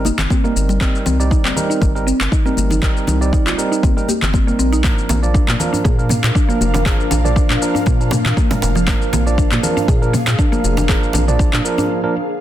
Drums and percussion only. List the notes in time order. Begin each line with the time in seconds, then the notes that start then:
0.05 high conga, shaker
0.18 clap, muted conga, low conga, shaker
0.30 kick, high conga, shaker
0.45 shaker
0.57 shaker
0.69 muted conga, shaker
0.81 kick, clap, shaker
0.95 shaker
1.06 muted conga, low conga, shaker
1.20 shaker
1.31 kick, shaker
1.45 clap, muted conga, high conga, shaker
1.56 low conga, shaker
1.71 shaker
1.82 kick, muted conga, high conga, shaker
1.96 shaker
2.08 shaker
2.21 clap, muted conga, shaker
2.32 kick, shaker
2.45 high conga, shaker
2.57 high conga, shaker
2.70 muted conga, low conga, shaker
2.82 kick, clap, shaker
2.97 shaker
3.07 muted conga, low conga, shaker
3.22 shaker
3.33 kick, shaker
3.46 clap, muted conga, high conga, shaker
3.59 shaker
3.73 shaker
3.83 kick, muted conga, high conga, shaker
3.98 shaker
4.08 high conga, shaker
4.22 clap, muted conga, low conga, shaker
4.34 kick, high conga, shaker
4.48 shaker
4.60 shaker
4.73 muted conga, shaker
4.84 kick, clap, djembe tone, shaker
4.98 shaker
5.09 djembe slap, muted conga, low conga, shaker
5.23 shaker
5.35 kick, shaker
5.48 clap, muted conga, high conga, shaker
5.60 low conga, shaker
5.74 djembe tone, shaker
5.85 kick, muted conga, high conga, shaker
5.99 shaker
6.09 mid tom, djembe tone, shaker
6.23 clap, muted conga, djembe slap, shaker
6.35 kick, shaker
6.50 high conga, shaker
6.61 high conga, shaker
6.74 djembe slap, muted conga, low conga, shaker
6.86 kick, clap, djembe tone, shaker
7.00 shaker
7.11 djembe slap, muted conga, low conga, shaker
7.25 mid tom, shaker
7.36 kick, shaker
7.50 clap, muted conga, high conga, shaker
7.62 shaker
7.75 djembe tone, shaker
7.86 kick, muted conga, high conga, shaker
8.01 shaker
8.11 mid tom, djembe slap, high conga, shaker
8.25 clap, muted conga, low conga, shaker
8.37 kick, high conga, shaker
8.51 mid tom, djembe slap, djembe tone, shaker
8.62 djembe slap, shaker
8.75 muted conga, shaker
8.87 kick, clap, djembe tone, shaker
9.02 shaker
9.13 djembe slap, muted conga, low conga, shaker
9.27 shaker
9.38 kick, shaker
9.51 clap, muted conga, high conga, shaker
9.63 low conga, shaker
9.77 djembe tone, shaker
9.88 kick, muted conga, high conga, shaker
10.03 shaker
10.14 mid tom, djembe tone, shaker
10.27 clap, djembe slap, muted conga, shaker
10.39 kick, shaker
10.53 high conga, shaker
10.64 high conga, shaker
10.77 djembe slap, muted conga, low conga, shaker
10.89 kick, clap, djembe tone, shaker
11.03 shaker
11.13 djembe slap, muted conga, low conga, shaker
11.28 mid tom, shaker
11.39 kick, shaker
11.53 clap, muted conga, high conga, shaker
11.65 shaker
11.78 djembe tone, shaker